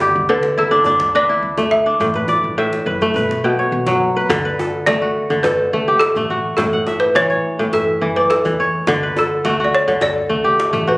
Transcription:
0.00 0.28 D3 medium
0.00 0.42 A3 medium
0.00 0.57 E4 medium
0.00 1.42 G4 medium
0.00 0.82 B4 medium
0.15 0.49 D2 medium
0.15 djembe slap soft
0.28 2.05 D3 medium
0.28 1.61 A4 medium
0.28 0.58 B4 medium
0.28 djembe slap soft
0.43 djembe slap soft
0.58 0.92 C#2 medium
0.58 1.29 E4 medium
0.58 1.17 A4 medium
0.71 0.86 D4 medium
0.71 djembe tone soft
0.84 1.15 D4 medium
0.84 djembe slap soft
0.84 djembe bass medium
1.00 1.35 D2 medium
1.00 djembe slap medium
1.15 1.86 D4 medium
1.15 2.15 B4 medium
1.15 1.68 D5 medium
1.29 2.86 E4 medium
1.42 1.89 D2 medium
1.42 djembe slap soft
1.58 3.01 A3 medium
1.58 djembe slap soft
1.58 djembe tone soft
1.71 2.82 E5 medium
1.86 3.54 D4 medium
2.00 2.35 A1 medium
2.00 2.57 A2 medium
2.00 djembe slap soft
2.00 djembe bass soft
2.14 2.86 B4 medium
2.14 djembe slap soft
2.28 3.39 D5 medium
2.28 djembe slap soft
2.28 djembe tone medium
2.44 2.78 A1 medium
2.44 djembe slap soft
2.58 3.20 A2 medium
2.58 3.61 E5 medium
2.73 djembe slap soft
2.86 3.09 F#1 medium
2.86 3.15 B4 medium
3.01 4.87 A3 medium
3.01 djembe tone soft
3.14 3.26 B1 medium
3.14 4.16 B4 medium
3.14 djembe slap soft
3.14 djembe bass soft
3.29 3.63 B1 medium
3.29 djembe slap soft
3.44 4.34 B2 medium
3.44 3.93 G5 medium
3.44 djembe slap soft
3.59 4.36 C#5 medium
3.72 4.18 B1 medium
3.87 4.34 F#3 medium
3.87 djembe slap soft
3.87 djembe tone soft
4.16 4.45 B4 medium
4.16 djembe slap soft
4.29 4.52 D2 medium
4.29 5.29 D3 medium
4.29 djembe slap medium
4.29 djembe bass medium
4.45 5.68 B4 medium
4.59 5.44 A4 medium
4.59 djembe tone medium
4.86 5.10 D2 medium
4.86 5.73 A3 medium
4.86 5.40 D5 medium
4.86 djembe slap medium
5.02 5.94 F#4 medium
5.30 5.65 D2 medium
5.30 6.64 D3 medium
5.30 djembe tone medium
5.43 6.76 A4 medium
5.43 6.03 B4 medium
5.43 djembe slap medium
5.43 djembe bass medium
5.73 5.96 C#2 medium
5.73 6.16 A3 medium
5.88 6.36 G4 medium
5.99 6.54 A4 medium
5.99 djembe slap medium
6.15 6.51 A1 medium
6.15 8.16 A3 medium
6.15 djembe tone soft
6.30 7.76 F#4 medium
6.57 6.82 A1 medium
6.57 7.58 A2 medium
6.57 7.03 A4 medium
6.57 djembe slap medium
6.57 djembe bass medium
6.73 7.69 F#5 medium
6.87 7.73 E5 medium
6.87 djembe tone medium
7.00 7.14 B4 medium
7.15 7.39 A1 medium
7.15 8.00 E3 medium
7.15 7.29 C#5 medium
7.15 7.75 C#5 medium
7.15 djembe slap medium
7.30 8.23 C#5 medium
7.59 7.94 A1 medium
7.59 8.93 A2 medium
7.59 djembe tone soft
7.73 8.18 A4 medium
7.73 8.76 E5 medium
7.73 djembe slap soft
7.73 djembe bass soft
8.02 8.25 F#1 medium
8.02 8.44 E3 medium
8.16 8.31 B4 medium
8.16 8.66 D5 medium
8.30 8.71 A4 medium
8.30 djembe slap medium
8.45 8.80 E2 medium
8.45 8.93 E3 medium
8.45 djembe tone soft
8.60 9.75 C#5 medium
8.87 9.11 D2 loud
8.87 9.87 D3 medium
8.87 djembe slap medium
8.87 djembe bass medium
9.03 10.26 B4 medium
9.16 10.01 A4 medium
9.16 9.69 A4 medium
9.16 djembe tone medium
9.45 9.68 D2 medium
9.45 10.29 A3 medium
9.45 9.59 F#4 medium
9.45 djembe slap medium
9.60 10.50 F#4 medium
9.64 9.72 D5 medium
9.75 10.04 C#5 loud
9.88 10.22 D2 medium
9.88 10.98 D3 medium
9.88 djembe tone soft
10.01 10.98 A4 medium
10.01 10.90 D5 loud
10.01 djembe slap medium
10.01 djembe bass soft
10.29 10.53 C#2 medium
10.29 10.72 A3 medium
10.44 10.93 G4 medium
10.60 djembe slap medium
10.73 10.98 A1 loud
10.73 10.98 A3 medium
10.73 djembe tone soft
10.87 10.98 F#4 medium
10.87 10.98 B4 medium

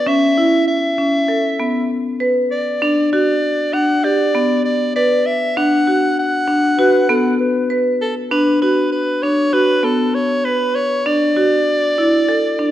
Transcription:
0.06 0.31 C#4 medium
0.06 0.67 E5 medium
0.37 0.87 E4 medium
0.68 1.86 E5 medium
0.98 1.23 C#4 soft
1.28 1.53 A4 medium
1.60 2.09 B3 medium
2.20 2.70 B4 medium
2.51 3.08 D5 medium
2.82 3.07 D4 medium
3.13 3.62 F#4 medium
3.13 3.75 D5 medium
3.74 3.98 D4 medium
3.74 4.06 F#5 medium
4.04 4.29 G4 medium
4.04 4.64 D5 medium
4.35 4.84 B3 medium
4.65 4.93 D5 medium
4.96 5.45 B4 medium
4.96 5.28 D5 medium
5.26 5.58 E5 medium
5.57 5.82 D4 medium
5.57 6.18 F#5 medium
5.87 6.37 F#4 soft
6.19 7.36 F#5 medium
6.48 6.73 D4 medium
6.79 7.03 F#4 medium
6.79 7.07 B4 medium
7.09 7.59 B3 medium
7.09 7.37 A4 medium
7.40 7.82 B4 medium
7.70 8.20 B4 medium
8.02 8.15 A4 medium
8.31 8.56 D4 medium
8.31 8.59 B4 medium
8.61 9.11 F#4 medium
8.61 8.90 B4 medium
8.92 9.24 B4 medium
9.22 9.48 D4 medium
9.22 9.55 C#5 medium
9.53 9.78 F#4 medium
9.53 9.86 B4 medium
9.83 10.33 B3 medium
9.83 10.16 A4 medium
10.14 10.46 C#5 medium
10.45 10.77 B4 medium
10.45 10.94 B4 medium
10.75 11.08 C#5 medium
11.06 11.31 D4 medium
11.06 12.71 D5 medium
11.36 11.86 F#4 medium
11.98 12.23 E4 medium
12.28 12.53 A4 medium
12.59 12.71 D4 medium

